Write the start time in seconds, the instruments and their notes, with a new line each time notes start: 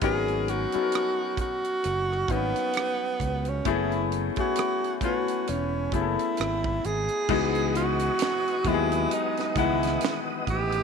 0.01 fingered electric bass G#1, grand piano F#3 B3 C#4 D#4 A#4, tenor saxophone G#4, kick, closed hi-hat
0.28 closed hi-hat
0.48 tenor saxophone F#4, closed hi-hat
0.72 grand piano F#3 B3 C#4 D#4 A4, muted fingered electric bass stroke, closed hi-hat
0.82 grand piano A#4
0.92 cross-stick, closed hi-hat
1.37 tenor saxophone F#4, kick, closed hi-hat
1.64 closed hi-hat
1.84 fingered electric bass F#1, closed hi-hat
2.12 cross-stick
2.28 fingered electric bass G#1, grand piano F#3 A#3 C#4 D#4 F#4, tenor saxophone B3, kick, closed hi-hat
2.36 grand piano B3
2.56 cross-stick, closed hi-hat
2.73 cross-stick, closed hi-hat
3.20 fingered electric bass C#2, kick, closed hi-hat
3.45 tenor saxophone C#4, closed hi-hat
3.65 fingered electric bass F#1, grand piano A3 B3 C#4 E4 G#4, tenor saxophone E4, kick, closed hi-hat
3.92 closed hi-hat
4.12 closed hi-hat
4.36 grand piano A3 B3 C#4 E4 G#4, muted fingered electric bass stroke, kick, closed hi-hat
4.40 tenor saxophone F#4
4.56 cross-stick, closed hi-hat
4.84 closed hi-hat
5.01 grand piano A3 B3 C#4 E4 B4, tenor saxophone F#4, kick, closed hi-hat
5.28 closed hi-hat
5.47 fingered electric bass E1, tenor saxophone C#4, closed hi-hat
5.92 fingered electric bass F#1, grand piano A3 B3 C#4 E4 G#4, tenor saxophone E4, kick, closed hi-hat
6.01 grand piano A4
6.19 closed hi-hat
6.37 fingered electric bass G#1, cross-stick, closed hi-hat
6.64 kick
6.84 fingered electric bass G#1, tenor saxophone G#4, closed hi-hat
7.08 closed hi-hat
7.29 fingered electric bass C#2, grand piano E3 G#3 B3 D#4 F#4, tonewheel organ B4 D#5 F#5 D#6, kick, crash
7.55 closed hi-hat
7.75 tenor saxophone F#4, closed hi-hat
7.99 closed hi-hat
8.19 snare, closed hi-hat
8.48 closed hi-hat
8.65 fingered electric bass D#2, grand piano F#3 G#3 B3 G4 D#5, tenor saxophone E4, kick, closed hi-hat
8.74 grand piano G#4
8.92 closed hi-hat
9.11 tenor saxophone D#4, closed hi-hat
9.37 snare, closed hi-hat
9.56 fingered electric bass C#2, grand piano D#3 G#3 B3 D#5 F#5, tenor saxophone E4, kick, closed hi-hat
9.63 grand piano E3
9.83 snare, closed hi-hat
10.01 snare, closed hi-hat
10.47 fingered electric bass A1, tenor saxophone G4, kick, closed hi-hat
10.72 closed hi-hat